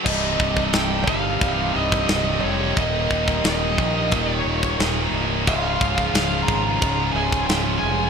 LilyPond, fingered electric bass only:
\new Staff \with { instrumentName = "Fingered electric bass" } { \clef bass \time 4/4 \key c \phrygian \tempo 4 = 89 c,,8 c,,8 c,,8 g,,8 c,,8 c,,8 c,,8 f,,8 | ees,,8 ees,,8 ees,,8 bes,,8 ees,,8 ees,,8 ees,,8 c,,8 | des,,8 des,,8 des,,8 aes,,8 des,,8 des,,8 des,,8 f,,8 | }